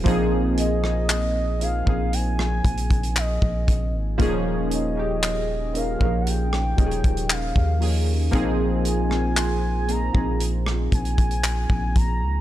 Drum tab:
HH |x---x---x---x---x---xxxxx---x---|x---x---x---x---x---xxxxx---o---|x---x---x---x---x---xxxxx---x---|
CP |--------x---------------x-------|--------x---------------x-------|--------x---------------x-------|
SD |------r-----------r-------------|------------------r-------------|------r-----------r-------------|
BD |o-------------o-----o-o---o-o---|o-------------o-----o-o---o-----|o-------------o-----o-o---o-o---|